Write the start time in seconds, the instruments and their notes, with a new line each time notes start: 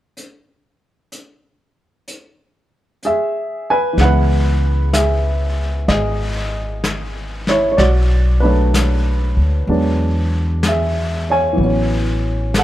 0.17 closed hi-hat
1.12 closed hi-hat
2.08 closed hi-hat
3.03 grand piano G#4 E5, closed hi-hat
3.70 grand piano B4 G#5
3.93 upright bass C#2, grand piano E3
3.98 grand piano G#3 B3 F#5, brush sweep, snare
4.02 grand piano E4 B4
4.93 grand piano G#4 E5, brush sweep, snare, hi-hat pedal
5.88 upright bass G#1, grand piano G#4 D#5, brush sweep, snare
6.84 brush sweep, snare, hi-hat pedal
7.47 grand piano E4 C#5, snare
7.72 grand piano C#5
7.77 upright bass B1, grand piano F#4 D5, brush sweep, snare
8.40 grand piano F#3 A3 D4 B4
8.45 grand piano C#5
8.74 brush sweep, snare, hi-hat pedal
9.37 upright bass D2
9.67 upright bass E2, grand piano F#3 G#3 B3 D4, brush sweep
10.63 grand piano G#4, brush sweep, snare, hi-hat pedal
10.68 grand piano E5
11.30 grand piano C#5 G#5
11.53 grand piano E3 F#3
11.58 upright bass A1, grand piano B3, brush sweep
11.64 grand piano C#4
12.54 grand piano A4, brush sweep, snare, hi-hat pedal
12.59 grand piano F#5